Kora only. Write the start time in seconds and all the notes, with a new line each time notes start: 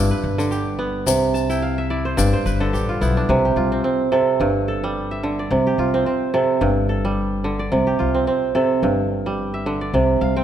Already playing: G2 D4 E4 F4
0.11 B4
0.38 D3
0.51 G4
0.79 B3
1.07 C3
1.34 A5
1.49 E4 G5
1.62 F5
1.78 E5
1.90 E4 D5
2.05 C5
2.17 G2 D5
2.33 C5
2.46 B4
2.60 D3 A4
2.73 G4
2.89 F4
3.01 B3 E4
3.17 D4
3.29 C3
3.45 G4
3.57 F4
3.72 C4
3.84 C4
4.12 C3 A4
4.41 G2
4.68 A4
4.84 G3
5.11 E5
5.23 D3
5.39 D5
5.51 C3
5.67 G4
5.79 F4
5.94 C4
6.06 C4
6.34 C3 A4
6.61 G2
6.89 A4
7.05 G3
7.44 D3
7.59 D5
7.72 C3
7.87 G4
7.99 F4
8.14 C4
8.27 C4
8.55 C3 A4
8.83 G2
9.26 G3
9.54 E5
9.66 D3
9.81 D5
9.94 C3
10.21 F5
10.36 C4 G5